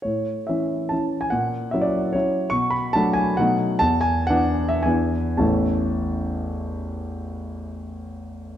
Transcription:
grand piano
0.02 A2 C#5
0.47 E3 C#4 E4 E5
0.89 E3 C#4 E4 A5
1.21 G#5
1.30 A#2 F#5
1.71 F#3 C#4 E4 E5
1.82 D5
2.13 F#3 C#4 E4 C#5
2.50 B2 C#6
2.70 B5
2.93 F#3 A3 D4 A5
3.13 G#5
3.37 B2 F#3 A3 D#4 F#5
3.79 E2 A5
4.01 G#5
4.27 E3 B3 D4 F#5
4.69 E5
4.83 E2 E3 B3 G#5
4.87 D4
5.37 A1 E2 E3 A3 C#4 E4 A5

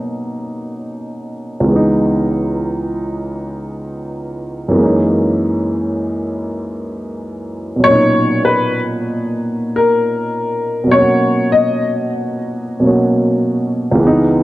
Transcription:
upright piano
Already playing: B2 F#3 A#3 C#4 D#4
1.60 C#2 E3
1.68 G#3 B3
1.76 D#4
4.68 F#2 E3
4.75 G#3 A#3
4.81 C#4 D#4
7.76 B2 F#3
7.84 A#2 C#4 C#5
7.91 D#4
8.45 B4
9.76 A#4
10.84 B2 F#3
10.91 A#3 C#4 C#5
10.99 F#4
11.52 D#5
12.80 B2 F#3 A#3
12.86 C#4 F#4
13.91 C#2 E3
13.99 G#3 B3
14.07 D#4

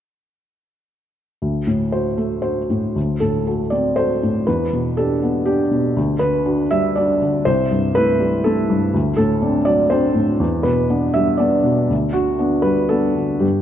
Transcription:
felt piano
1.42 D2
1.67 A2
1.92 F#4 C5
2.17 A3
2.42 F#4 C5
2.70 A2
2.96 D2
3.20 A2 A4
3.47 F#4 A4
3.70 C4 D5
3.96 F#4 A4 C5
4.23 A2
4.47 E2 B4
4.73 B2
4.97 D4 G4 A4
5.23 B3
5.46 D4 G4
5.71 B2
5.96 D2
6.19 D3 B4
6.46 D4 F#4
6.71 G3 E5
6.96 D4 F#4 D5
7.22 D3
7.45 C2 C5
7.71 G2
7.95 A3 E4 B4
8.20 G3
8.44 A3 E4 A4
8.70 G2
8.94 D2
9.16 A2 A4
9.42 C4 D4
9.65 F#3 D5
9.90 C4 D4 C5
10.15 A2
10.40 E2
10.63 B2 B4
10.90 B3 D4
11.14 G3 E5
11.37 B3 D4 D5
11.64 B2
11.90 D2
12.13 D3 F#4
12.39 B3 D4
12.62 G3 B4
12.89 B3 D4 A4
13.15 D3
13.40 G2 G4

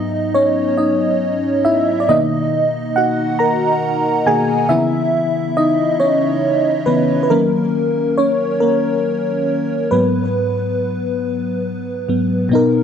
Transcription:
fm electric piano
Already playing: G#2 F#3 B3 D#4 D#5
0.34 C#4 C#5
0.78 D#4 D#5
1.65 E4 E5
2.00 D5
2.09 B2 D#3 A#3 D#4 D#5
2.96 F#4 F#5
3.39 A#4 A#5
4.26 B2 D#3 A#3 G#4 G#5
4.69 C#3 E3 B3 E4 E5
5.57 D#4 D#5
6.00 C#4 C#5
6.86 C#3 E3 B3 B4
7.23 B4
7.30 D#3 F#3 A#3 C#4 A#4
8.18 C#4 C#5
8.60 A#3 A#4
9.91 G#2 F#3 B3 B4
12.09 G#2 F#3 B3
12.49 B2 B3 D#4
12.55 A#4

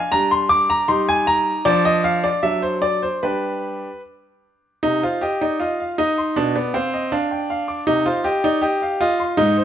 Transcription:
grand piano
Already playing: G#5
0.12 G3 D4 A#5
0.31 C6
0.49 D6
0.70 A#5
0.88 G3 D#4 C6
1.09 G#5
1.27 A#5
1.65 F3 D4 D5
1.85 D#5
2.04 F5
2.24 D5
2.43 F#3 D4 E5
2.62 C5
2.82 D5
3.03 C5
3.23 G3 D4 G4 B4
4.83 C3 D#4
5.03 F4 C5
5.21 G4 D#5
5.41 D#4 D5
5.60 F4 D#5
5.80 F5
5.98 D#4 D#5
6.18 C6
6.36 B2 D4
6.55 B3 D5
6.74 C4 F5
6.94 D#5
7.12 D4 F5
7.31 G5
7.50 F5
7.68 D6
7.87 C3 D#4
8.06 F4 C5
8.24 G4 D#5
8.44 D#4 D5
8.62 G4 D#5
8.82 F5
9.01 F4 D#5
9.20 C6
9.37 G#2 D#4
9.57 C5

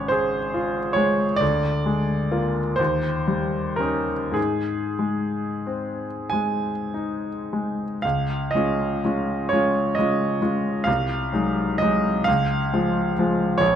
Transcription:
grand piano
Already playing: G#1 G#3 C#4 C#5
0.08 G#4 C5
0.54 F4
0.93 G#3 C#5
1.36 D5
1.40 D2
1.86 G#3
2.32 A#3 F4
2.76 D#2 C5
3.28 G3
3.76 C#4 A#4
3.81 D#4
4.32 G#2 G#4
4.99 G#3
5.67 C4
6.30 G#3 G#5
6.94 D#4
7.53 G#3
8.02 C#2 F5
8.51 D#5
8.55 G#3 C#4 F4
9.05 G#3 C#4 F4
9.49 G#3 C#5
9.53 C#4 F4
9.95 C#4 D#5
9.99 G#3 F4
10.42 G#3 C#4 F4
10.84 C2 F5
11.33 F#3 G#3 D#4
11.78 D#4 D#5
11.82 F#3 G#3
12.24 C#2 F5
12.73 F3 G#3 F4
13.19 F3 G#3 F4
13.58 A#1 C#5

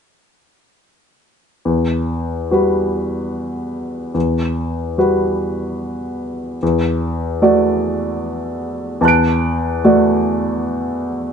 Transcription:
grand piano
1.65 E2
2.51 G3 F#4 B4
4.14 E2
4.98 G3 F#4 B4
6.63 E2
7.42 A3 F#4 D5
9.01 E2 A5 F#6
9.08 D7
9.84 A3 F#4 D5

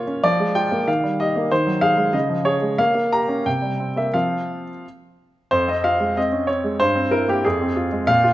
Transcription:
grand piano
Already playing: A#3 F4 C#5
0.07 C#4
0.23 F3 D5
0.40 G#3
0.55 F4 G5
0.72 A#3
0.88 D#3 F5
1.04 G3
1.20 G4 D#5
1.36 A#3
1.51 D#3 C5
1.67 F#3
1.81 G#4 F5
1.97 G#3
2.13 C#3 D#5
2.29 F3
2.45 G#4 C#5
2.62 G#3
2.78 A#3 F5
2.95 A#3
3.13 G4 A#5
3.28 C#4
3.46 C3 G5
3.62 G3
3.80 C4
3.96 A#3 E5
4.14 F3 C4 F4 F5
5.51 F2 C5
5.68 C4 D#5
5.84 F4 F5
6.00 G#3
6.17 C4 D#5
6.32 C#4
6.47 C4 C#5
6.64 G#3
6.80 G2 C5
6.95 C4
7.11 E4 A#4
7.28 A#3 G4
7.45 F2 G#4
7.62 C4
7.76 F4
7.92 G#3
8.07 A#2 F5
8.24 F4

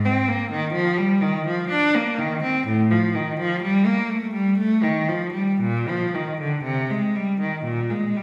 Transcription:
cello
0.05 C4
0.28 A#3
0.51 D#3
0.73 F3
0.98 G3
1.21 D#3
1.46 F3
1.70 D4
1.94 A#3
2.18 D#3
2.42 C4
2.66 A2
2.91 F3
3.15 D#3
3.39 F3
3.62 G3
3.86 A#3
4.10 A3
4.33 G3
4.57 A3
4.83 D#3
5.09 F3
5.32 G3
5.60 A#2
5.88 F3
6.15 D#3
6.40 D3
6.63 C3
6.90 G#3
7.15 G3
7.40 D#3
7.63 A#2
7.90 G#3
8.16 G3

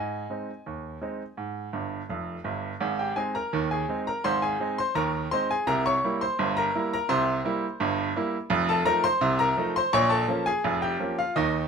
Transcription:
grand piano
Already playing: G#2 D#5 G#5
0.30 G#3 C4 D#4
0.66 D#2
1.01 G#3 C4 D#4
1.37 G#2
1.73 G1 G2
2.09 F1 F2
2.44 G1 G2
2.81 G#1 G#2
2.99 G4 G5
3.16 G#3 C4 D#4 G#4 G#5
3.35 A#4 A#5
3.53 D#2 D#3
3.71 G#4 G#5
3.89 G#3 C4 D#4
4.07 A#4 A#5
4.24 G#1 G#2 C5 C6
4.42 G#4 G#5
4.60 G#3 C4 D#4
4.78 C5 C6
4.95 D#2 D#3 A#4 A#5
5.31 G#3 C4 D#4 C5 C6
5.51 G#4 G#5
5.67 C2 C3 A#4 A#5
5.86 C#5 C#6
6.04 G3 A#3 E4
6.21 C5 C6
6.39 G1 G2
6.57 A#4 A#5
6.75 G3 A#3 E4
6.93 A#4 A#5
7.09 C2 C3 C5 C6
7.45 G3 A#3 E4
7.80 G1 G2
8.16 G3 A#3 E4
8.50 F1 F2
8.69 A4 A5
8.85 F3 A3 D#4 A#4 A#5
9.04 C5 C6
9.21 C2 C3
9.39 A#4 A#5
9.57 F3 A3 D#4
9.76 C5 C6
9.93 A#1 A#2 C#5 C#6
10.10 A4 A5
10.28 F3 A#3 C#4
10.46 G#4 G#5
10.64 F1 F2
10.82 G4 G5
11.00 F3 A#3 C#4
11.19 F4 F5
11.36 D#2 D#3 D#4 D#5

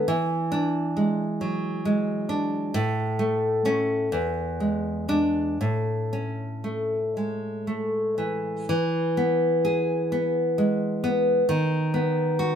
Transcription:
nylon-string guitar
0.08 E3
0.52 D4
0.97 G#3
1.41 F#3
1.85 G#3
2.29 D4
2.74 A2
3.19 A3
3.65 A3 C#4
4.12 E2
4.60 G#3
5.08 G#3 D4
5.61 A2
6.13 C#4
6.64 A3
7.17 G#3
7.67 A3
8.18 E3
8.69 E3
9.17 B3
9.65 G#4
10.12 B3
10.58 G#3
11.04 B3
11.49 D#3
11.94 B3
12.39 F#4

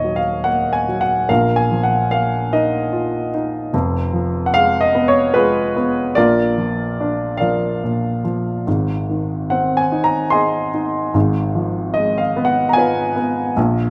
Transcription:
grand piano
Already playing: D#1 D#2 A#2 D#3 C#5 D#5
0.04 F#3
0.16 F5
0.44 A#3 F#5
0.73 G#5
0.88 F#3
1.01 F#5
1.29 A#1 A#2 A#4 F5
1.56 G#5
1.71 F3
1.83 F#5
2.11 A#3 F5
2.53 D#4 A#4 D#5
2.93 F4
3.34 D#4
3.73 F1 F2
4.13 F3
4.46 F#5
4.53 G#3 F5
4.81 D#5
4.95 B3
5.08 C#5
5.34 G#3 F4 G#4 B4
5.76 B3
6.15 A#1 A#2 F4 A#4 D5
6.57 F3
7.01 D4
7.37 F3 A#4 D5 F5
7.84 A#2
8.24 F3
8.67 G#1 G#2
9.09 D#3
9.50 C4 F#5
9.77 G#5
9.92 D#4
10.04 A#5
10.30 G#4 D#5 G#5 C6
10.74 D#4
11.14 G#1 G#2
11.55 F3
11.94 G#3 D#5
12.18 F5
12.36 B3
12.45 F#5
12.69 A#5
12.73 F4 G#5
12.78 B4 F5
13.16 B3
13.57 A#1 A#2

